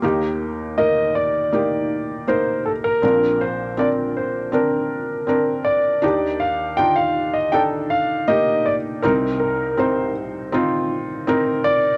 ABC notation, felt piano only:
X:1
M:4/4
L:1/8
Q:1/4=80
K:Eblyd
V:1 name="Felt piano"
[B,EG]2 [B,EB]2 [B,EG]2 [B,EB]2 | [CDB]2 [CDB]2 [CDB]2 [CDB]2 | [DEG]2 [DEF]2 [DEA]2 [B,EG]2 | [CEB]2 [CEc]2 [CEF]2 [CEB]2 |]
V:2 name="Felt piano" clef=bass
[E,,E,]8 | [B,,,B,,]8 | [E,,E,]8 | [C,,C,]8 |]